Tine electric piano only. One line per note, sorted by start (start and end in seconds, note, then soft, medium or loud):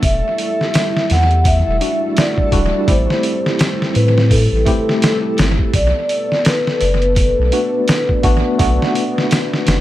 1.81 2.49 G3 medium
1.81 2.49 D4 medium
1.81 2.49 E4 medium
1.81 2.49 F#4 medium
2.52 2.84 G3 medium
2.52 2.85 D4 medium
2.52 2.85 E4 medium
2.52 2.85 F#4 loud
2.87 4.63 A3 medium
2.87 4.63 C4 medium
2.87 4.63 E4 medium
2.87 4.64 G4 loud
4.65 5.72 A3 loud
4.65 5.72 C4 medium
4.65 5.72 E4 medium
4.65 5.73 G4 loud
7.52 8.20 A3 medium
7.52 8.20 B3 medium
7.52 8.21 D4 medium
7.52 8.21 F#4 medium
8.23 8.56 A3 medium
8.23 8.56 B3 medium
8.23 8.56 D4 medium
8.23 8.56 F#4 loud
8.59 9.81 A3 medium
8.59 9.81 B3 medium
8.59 9.81 D4 medium
8.59 9.81 F#4 loud